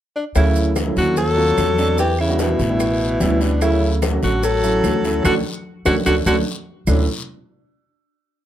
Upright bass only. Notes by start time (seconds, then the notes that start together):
0.36 D2
0.97 D#2
1.58 E2
2.59 A1
3.21 D2
4.22 A1
4.84 D2
5.25 D2
5.86 D2
6.06 D2
6.26 D2
6.87 D2